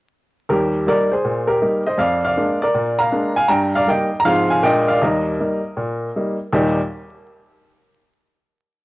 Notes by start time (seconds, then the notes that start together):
0.49 D#2 G3 G4 A#4
0.86 G3 A#3 D#4 A#4 D5
1.11 G#4 C5
1.24 A#2
1.47 G4 A#4
1.61 G3 A#3 D#4
1.86 C5 D#5
1.98 F2 D5 F5
2.25 D5 F5
2.37 G#3 A#3 D4
2.62 A#4 D5
2.74 A#2
2.99 F5 A#5
3.12 G#3 A#3 D4
3.36 F5 G#5
3.48 G2 G5 A#5
3.75 D5 F5
3.87 G3 A#3 D#4 D#5 G5
4.20 A#5
4.25 G#2 F3 C4 F4 C5 F5
4.50 F5 G#5
4.63 A#2 G#3 A#3 D4 D#5 G5
4.88 D5 F5
5.02 D#2 G3 A#4 D#5
5.40 G3 A#3 D#4
5.77 A#2
6.16 G3 A#3 D#4
6.53 D#2 A#2 G3 A#3 D#4 G4